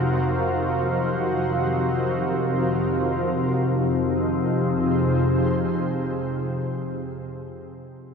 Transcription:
Already playing: synth drone F2 C3, ambient pad D#4 F4 F#4 A#4 C5, synth texture F5
3.36 synth drone F2 C3, ambient pad D#4
3.53 ambient pad F4
3.71 ambient pad G#4
3.88 ambient pad C5

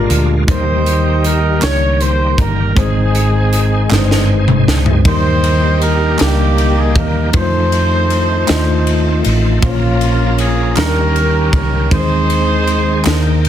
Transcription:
Already playing: tine electric piano A#2 G#3 D4 F4 G4 A#4, tonewheel organ D3 G#3 A#3 F4, horn section D4 F4 A#4
0.10 fingered electric bass D2, closed hi-hat
0.47 tonewheel organ D#3 G3 A#3 F4, tine electric piano D#3 G3 A#3 D#4 A#4, horn section D#4 G4 C5, kick, closed hi-hat
0.54 tonewheel organ G4
0.86 closed hi-hat
1.24 horn section A#4, closed hi-hat
1.60 fingered electric bass C#2, tine electric piano G3 A#3 D#4 G4, horn section C#5, snare, clap, closed hi-hat
2.01 horn section C5, closed hi-hat
2.38 fingered electric bass G1, horn section A#4, kick, closed hi-hat
2.75 fingered electric bass G#1, tine electric piano G#2 G#3 C4 D#4 C5, tonewheel organ D#3 G#3 C4 G4, horn section C4 D#4 G#4, kick, closed hi-hat
2.82 tonewheel organ G#4
3.15 closed hi-hat
3.53 closed hi-hat
3.89 fingered electric bass G1, tine electric piano G#3 C4 D#4 B4, snare, clap
3.98 tine electric piano C5
4.11 snare
4.48 mid tom
4.67 fingered electric bass C#2, snare
4.86 floor tom
5.04 fingered electric bass D#2, tine electric piano D#3 G3 A#3 D#4 A#4, tonewheel organ D#3 G3 A#3 G4, horn section D#4 G4 C5, kick, ride
5.44 ride
5.82 horn section A#4, ride
6.18 fingered electric bass C#2, tine electric piano G3 A#3 D#4 A#4, horn section A#3 D#4 G4, snare, clap, ride
6.58 ride
6.78 horn section G#4
6.95 fingered electric bass D#2, horn section A#4, kick, ride
7.33 fingered electric bass F2, tonewheel organ D#3 G3 C4 F4, tine electric piano A3 D#4 F4 B4, horn section D#4 A4 C5, kick, ride
7.41 tonewheel organ A3, tine electric piano C5
7.72 ride
8.10 ride
8.47 fingered electric bass D#2, tine electric piano A3 D#4 F4 D#5, snare, clap, ride
8.87 ride
9.25 fingered electric bass A1, ride
9.61 fingered electric bass A#1, tine electric piano A#2 A#3 C#4 F4 C5, tonewheel organ F3 A#3 C#4 A#4, horn section A#3 C#4 F4, kick, ride
9.69 tine electric piano C#5
10.01 ride
10.38 horn section G#4, ride
10.76 fingered electric bass D#2, tine electric piano D#3 G3 C#4 D#4 G#4, tonewheel organ D#3 A#3 C#4 F#4, horn section C#4 G4 A#4, snare, clap, ride
10.83 tonewheel organ G4, tine electric piano A#4
11.16 ride
11.52 fingered electric bass C#2, horn section A#4, kick, ride
11.90 fingered electric bass D#2, tine electric piano D#3 G#3 C4 D#4 A#4, tonewheel organ D#3 G#3 C4 G#4, horn section D#4 G#4 C5, kick, ride
11.99 tine electric piano C5
12.30 ride
12.67 ride
13.05 fingered electric bass D#2, tine electric piano D#3 A#3 D#4 A#4, tonewheel organ D#3 A#3 G5, snare, clap, ride
13.45 ride

